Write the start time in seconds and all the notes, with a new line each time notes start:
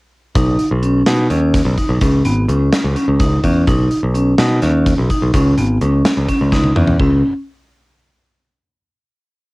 0.35 B1 D#4, kick, closed hi-hat
0.59 closed hi-hat
0.71 B1
0.83 C#4, closed hi-hat
1.06 B2 D#4, snare, closed hi-hat
1.30 D#2 C#4, closed hi-hat
1.54 kick, snare, closed hi-hat
1.65 B1
1.78 D#4, kick, closed hi-hat
1.89 B1
2.01 C#2 C#4, kick, closed hi-hat
2.25 G#1 B3, closed hi-hat
2.48 C#2 C#4, closed hi-hat
2.73 snare, closed hi-hat
2.84 C#2
2.96 C#4, closed hi-hat
3.08 C#2
3.20 D#4, kick, closed hi-hat
3.44 E2 C#4, kick, closed hi-hat
3.67 B1 D#4, kick, closed hi-hat
3.91 closed hi-hat
4.03 B1
4.15 C#4, closed hi-hat
4.38 B2 D#4, snare, closed hi-hat
4.62 D#2 C#4, snare, closed hi-hat
4.86 kick, closed hi-hat
4.98 B1
5.10 D#4, kick, closed hi-hat
5.22 B1
5.34 C#2 C#4, kick, closed hi-hat
5.57 G#1 B3, closed hi-hat
5.81 C#2 C#4, closed hi-hat
6.05 snare, closed hi-hat
6.17 C#2
6.29 C#4, kick, closed hi-hat
6.41 C#2
6.52 D#4, kick, snare
6.64 high tom
6.76 E2 C#4, mid tom
6.87 floor tom
7.00 C#2 C#4, kick